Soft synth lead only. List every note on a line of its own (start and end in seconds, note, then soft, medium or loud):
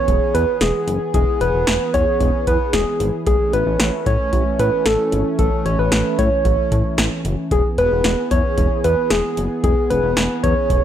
0.00 0.36 C#5 loud
0.34 0.63 B4 loud
0.61 1.01 G#4 medium
1.14 1.43 G#4 loud
1.41 1.95 B4 loud
1.94 2.49 C#5 loud
2.47 2.75 B4 loud
2.74 3.13 G#4 medium
3.27 3.55 G#4 loud
3.53 4.08 B4 loud
4.07 4.59 C#5 loud
4.59 4.88 B4 medium
4.86 5.26 A4 medium
5.39 5.67 A4 loud
5.66 5.81 C#5 loud
5.79 6.20 B4 medium
6.19 7.25 C#5 loud
7.52 7.64 G#4 loud
7.78 8.28 B4 loud
8.31 8.80 C#5 loud
8.84 9.12 B4 loud
9.11 9.50 G#4 medium
9.64 9.92 G#4 loud
9.90 10.45 B4 loud
10.43 10.84 C#5 loud